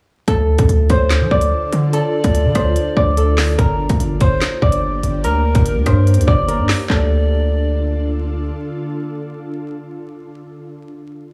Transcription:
0.28 0.58 D2 loud
0.28 3.55 D3 medium
0.28 3.55 D4 medium
0.28 3.55 F4 medium
0.28 3.55 A4 medium
0.28 1.93 A4 loud
0.28 kick loud
0.28 closed hi-hat medium
0.58 0.69 F2 loud
0.58 kick loud
0.58 closed hi-hat medium
0.69 0.89 D2 loud
0.69 closed hi-hat medium
0.90 1.22 D2 loud
0.90 2.55 C5 medium
0.90 1.10 C5 medium
0.90 kick medium
0.90 closed hi-hat medium
1.10 snare loud
1.10 clap medium
1.10 closed hi-hat medium
1.21 1.31 F3 medium
1.31 1.51 D2 loud
1.31 2.96 D5 medium
1.31 kick loud
1.41 closed hi-hat medium
1.72 2.02 D3 loud
1.72 closed hi-hat medium
1.93 3.17 A4 loud
1.93 3.55 D5 loud
1.93 closed hi-hat medium
2.24 2.47 D2 loud
2.24 kick loud
2.24 closed hi-hat medium
2.35 closed hi-hat medium
2.45 2.55 D3 loud
2.55 2.75 D2 loud
2.55 4.20 C5 medium
2.55 kick medium
2.55 cross-stick medium
2.55 closed hi-hat medium
2.76 closed hi-hat medium
2.97 3.56 D2 loud
2.97 4.62 D5 medium
2.97 kick loud
3.17 3.64 A4 medium
3.17 closed hi-hat medium
3.38 snare loud
3.38 clap loud
3.38 open hi-hat medium
3.58 3.89 G1 loud
3.58 6.86 A#3 medium
3.58 6.86 D4 medium
3.58 6.86 G4 medium
3.58 5.24 A#4 loud
3.58 kick loud
3.58 closed hi-hat medium
3.89 4.00 D2 loud
3.89 kick loud
3.89 closed hi-hat medium
4.00 4.20 G1 loud
4.00 closed hi-hat medium
4.21 4.41 G1 loud
4.21 5.86 C5 loud
4.21 4.40 C5 medium
4.21 kick medium
4.21 closed hi-hat medium
4.41 snare loud
4.41 clap medium
4.41 closed hi-hat medium
4.62 5.02 G1 loud
4.62 6.27 D5 medium
4.62 kick loud
4.72 closed hi-hat medium
5.03 5.26 G1 loud
5.03 closed hi-hat medium
5.24 5.54 D2 loud
5.24 6.24 A#4 loud
5.24 6.48 A#4 loud
5.24 closed hi-hat medium
5.55 5.77 G1 loud
5.55 kick loud
5.55 closed hi-hat medium
5.66 closed hi-hat medium
5.76 5.86 D2 loud
5.86 6.19 G2 loud
5.86 7.84 C5 medium
5.86 kick medium
5.86 cross-stick medium
5.86 closed hi-hat medium
6.07 closed hi-hat soft
6.14 6.27 D2 medium
6.14 closed hi-hat medium
6.21 closed hi-hat medium
6.27 6.60 G1 loud
6.27 8.12 D5 medium
6.27 6.86 D5 medium
6.27 kick loud
6.48 6.96 A#4 medium
6.48 closed hi-hat medium
6.59 6.69 G2 loud
6.69 snare loud
6.69 clap loud
6.69 open hi-hat medium
6.90 8.51 D2 loud
6.90 10.44 D3 medium
6.90 10.44 D4 medium
6.90 10.44 F4 medium
6.90 9.09 A4 medium
6.90 10.44 A4 medium
6.90 8.10 D5 loud
6.90 kick loud
6.90 clap medium

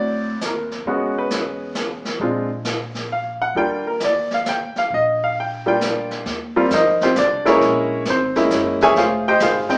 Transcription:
0.00 0.37 D2 medium
0.00 0.78 F#3 medium
0.00 0.78 C4 soft
0.00 0.78 E4 soft
0.00 0.78 F#4 medium
0.00 0.39 D5 medium
0.41 0.83 D#2 medium
0.41 snare medium
0.41 hi-hat pedal medium
0.45 1.14 A#4 medium
0.71 snare soft
0.85 2.16 E2 medium
0.85 2.12 G#3 medium
0.85 2.13 B3 medium
0.85 2.13 C#4 soft
0.85 2.13 F#4 medium
0.85 brush sweep soft
0.85 kick soft
1.18 1.73 B4 medium
1.30 snare medium
1.30 hi-hat pedal soft
1.75 snare medium
1.75 hi-hat pedal soft
2.05 snare soft
2.19 3.51 A#1 medium
2.19 2.48 G#3 medium
2.19 2.48 C4 soft
2.19 2.48 D4 soft
2.19 2.48 F4 soft
2.19 brush sweep soft
2.19 kick soft
2.65 snare medium
2.65 hi-hat pedal soft
2.95 snare soft
3.12 3.41 F5 medium
3.42 3.56 F#5 medium
3.55 4.71 D#2 medium
3.55 3.83 G3 medium
3.55 3.83 A#3 medium
3.55 3.83 D4 medium
3.55 3.83 F4 medium
3.55 3.86 G5 medium
3.55 brush sweep soft
3.55 kick soft
3.87 4.01 A#4 medium
4.00 snare soft
4.00 hi-hat pedal soft
4.04 4.32 D5 medium
4.31 4.47 F5 medium
4.31 snare soft
4.46 4.76 G5 medium
4.46 snare soft
4.46 hi-hat pedal soft
4.75 4.92 F5 medium
4.75 muted upright bass stroke soft
4.75 snare soft
4.90 6.21 A#1 medium
4.90 brush sweep soft
4.90 kick soft
4.94 5.21 D#5 medium
5.24 5.37 F5 medium
5.40 5.67 G5 medium
5.66 6.23 G3 medium
5.66 6.23 A#3 soft
5.66 6.23 D4 soft
5.66 6.23 F4 medium
5.66 6.16 G5 medium
5.81 snare medium
5.81 hi-hat pedal medium
6.11 snare soft
6.26 6.69 D#2 medium
6.26 brush sweep soft
6.26 kick soft
6.26 snare soft
6.56 6.69 G3 medium
6.56 6.69 A#3 medium
6.56 6.69 C4 medium
6.56 6.70 F4 medium
6.70 7.14 F2 medium
6.70 7.01 D#4 medium
6.70 7.01 A#4 medium
6.70 7.01 C5 medium
6.70 7.01 D#5 medium
6.70 kick soft
6.70 snare medium
6.70 hi-hat pedal soft
7.01 7.16 C4 medium
7.01 7.16 F4 medium
7.01 7.16 G4 medium
7.01 7.16 C5 medium
7.01 snare soft
7.15 7.59 C2 medium
7.15 7.46 D4 medium
7.15 7.46 D5 medium
7.15 kick soft
7.15 snare medium
7.15 hi-hat pedal soft
7.45 8.02 G#3 medium
7.45 8.02 A#3 medium
7.45 8.02 C#4 medium
7.45 8.02 E4 medium
7.45 8.03 G#4 medium
7.45 8.03 A#4 medium
7.45 8.02 C#5 medium
7.45 snare soft
7.61 8.04 A#1 medium
7.61 brush sweep soft
7.61 kick soft
7.61 snare soft
8.05 8.49 G#1 medium
8.05 kick soft
8.05 snare medium
8.05 hi-hat pedal soft
8.10 8.37 C4 medium
8.10 8.36 C5 medium
8.35 8.92 G#3 medium
8.35 8.92 A#3 medium
8.35 8.92 C#4 medium
8.35 8.92 E4 medium
8.35 snare soft
8.50 8.93 F#1 medium
8.50 kick soft
8.50 snare medium
8.50 hi-hat pedal soft
8.81 8.96 G#4 medium
8.81 8.96 C#5 medium
8.81 8.96 E5 medium
8.81 8.96 G#5 loud
8.81 snare soft
8.95 9.38 F1 medium
8.95 9.26 F4 medium
8.95 9.25 G#4 medium
8.95 9.25 C5 medium
8.95 9.25 F5 medium
8.95 brush sweep soft
8.95 kick soft
8.95 snare soft
9.28 9.41 G4 medium
9.28 9.41 C5 medium
9.28 9.41 D#5 medium
9.28 9.41 G5 medium
9.40 9.67 G#1 medium
9.40 9.78 F4 medium
9.40 9.78 G#4 medium
9.40 9.78 C5 medium
9.40 9.78 F5 medium
9.40 kick soft
9.40 snare medium
9.40 hi-hat pedal soft
9.69 9.78 G#3 medium
9.69 9.78 C4 medium
9.69 9.78 D#4 medium
9.69 9.78 G5 medium
9.69 muted upright bass stroke soft
9.69 snare soft

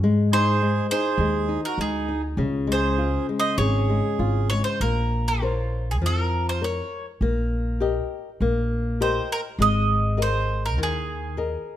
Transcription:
0.01 0.78 G#2 medium
0.01 0.61 G#3 medium
0.32 0.61 D#4 medium
0.32 0.87 G#4 medium
0.32 0.87 C5 loud
0.62 0.90 G#3 medium
0.91 1.19 D#4 medium
0.91 1.61 G#4 medium
0.91 1.65 C5 loud
1.18 1.57 D#2 medium
1.18 1.49 G#3 medium
1.48 1.77 D#4 medium
1.65 1.79 F#4 medium
1.65 1.78 A#4 medium
1.78 2.39 D2 medium
1.78 2.08 G#3 medium
1.78 2.21 D#4 medium
1.78 2.21 G#4 medium
2.08 2.37 D#4 soft
2.37 3.16 C#2 medium
2.37 4.78 C#3 medium
2.67 2.97 G#3 soft
2.72 3.27 G#4 medium
2.72 3.26 C5 medium
2.98 3.27 F4 soft
3.29 3.58 G#3 medium
3.39 3.58 C5 medium
3.39 3.57 D#5 medium
3.58 3.98 G#1 loud
3.58 3.88 G#4 medium
3.58 4.48 G#4 medium
3.58 4.47 C#5 medium
3.90 4.20 G#3 medium
4.19 4.60 G#1 medium
4.19 4.50 F4 medium
4.50 4.81 G#3 soft
4.50 4.64 C#5 medium
4.64 4.81 C5 medium
4.80 6.01 A#1 medium
4.80 5.41 A#3 medium
4.80 5.29 A#4 medium
5.28 5.90 F4 medium
5.42 5.90 A#4 soft
5.42 5.91 C5 soft
5.42 5.91 C#5 soft
5.91 5.96 G#4 medium
6.01 6.80 F2 medium
6.01 6.61 F3 medium
6.06 6.49 A#4 medium
6.49 6.64 C5 medium
6.61 7.10 A#4 soft
6.61 7.10 C#5 soft
6.61 7.05 C#5 medium
7.21 7.99 A#1 medium
7.21 7.80 A#3 medium
7.80 8.29 G4 soft
7.80 8.29 A#4 soft
7.80 8.29 D#5 medium
8.40 9.17 A#1 medium
8.40 8.99 A#3 medium
9.00 9.48 G4 soft
9.00 9.48 A#4 soft
9.00 9.29 C5 medium
9.00 9.48 D#5 medium
9.32 9.40 A#4 medium
9.59 10.77 G#1 loud
9.59 10.17 G#3 medium
9.59 10.21 D#5 loud
10.17 10.65 G#4 medium
10.17 10.65 A#4 soft
10.17 10.66 D#5 medium
10.22 10.65 C5 medium
10.66 10.79 A#4 medium
10.77 11.55 D#2 medium
10.77 11.36 D#3 medium
10.83 11.36 G#4 medium
11.37 11.77 G#4 soft
11.37 11.77 A#4 soft
11.37 11.77 D#5 medium

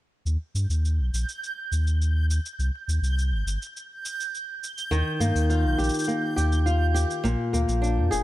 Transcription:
0.25 0.37 D#2 medium
0.25 8.23 G6 medium
0.25 shaker soft
0.54 0.66 G2 medium
0.54 shaker medium
0.69 1.00 D#2 medium
0.69 shaker soft
0.85 shaker soft
0.98 1.10 A#1 medium
1.13 1.25 A#1 medium
1.13 shaker medium
1.29 shaker soft
1.44 shaker soft
1.71 2.39 D#2 medium
1.71 shaker medium
1.87 shaker soft
2.02 shaker soft
2.31 shaker medium
2.46 shaker soft
2.59 2.70 C2 medium
2.59 shaker soft
2.88 2.99 D#2 medium
2.88 shaker medium
3.01 3.33 C2 medium
3.01 shaker soft
3.19 shaker soft
3.31 3.43 G1 medium
3.46 3.57 G1 medium
3.46 shaker medium
3.62 shaker soft
3.77 shaker soft
4.05 shaker medium
4.20 shaker soft
4.35 shaker soft
4.64 shaker medium
4.78 shaker soft
4.91 5.03 D#2 medium
4.91 7.24 D#3 medium
4.91 shaker soft
5.20 5.32 G2 medium
5.20 6.07 A#3 medium
5.20 shaker medium
5.35 5.65 D#2 medium
5.35 shaker soft
5.50 6.65 F4 medium
5.50 shaker soft
5.64 5.76 A#1 medium
5.78 5.91 A#1 medium
5.78 6.35 G4 medium
5.78 shaker soft
5.84 shaker soft
5.89 shaker soft
5.94 shaker soft
5.99 shaker medium
6.04 7.53 A#3 medium
6.04 shaker medium
6.36 7.05 D#2 medium
6.36 6.93 G4 medium
6.36 shaker medium
6.52 shaker soft
6.66 7.81 F4 medium
6.66 shaker soft
6.94 7.30 G4 medium
6.94 shaker medium
7.10 shaker soft
7.24 7.36 A#1 medium
7.24 8.23 A#2 medium
7.24 shaker soft
7.53 7.65 D2 medium
7.53 8.23 A#3 medium
7.53 shaker medium
7.68 7.99 A#1 medium
7.68 shaker soft
7.82 8.23 D4 medium
7.82 shaker soft
7.97 8.09 F2 medium
8.11 8.23 F1 medium
8.11 8.23 G#4 medium
8.11 shaker medium

